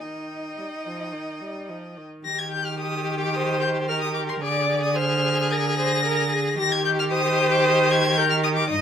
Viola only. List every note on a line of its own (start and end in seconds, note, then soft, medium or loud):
0.02 0.52 D#3 soft
0.58 0.66 G3 soft
0.86 1.15 F3 soft
1.13 1.43 D#3 soft
1.41 1.71 G3 soft
1.69 1.99 F3 soft
1.97 2.25 D#3 soft
3.35 3.91 C5 medium
3.89 4.43 A#4 medium
4.42 4.97 D5 medium
4.96 5.53 C5 medium
5.52 5.78 A#4 medium
5.79 6.05 C5 medium
6.05 6.31 A#4 medium
6.32 6.60 G#4 medium
6.58 7.13 G4 medium
7.11 8.18 C5 loud
8.17 8.69 A#4 medium
8.69 8.81 D#5 loud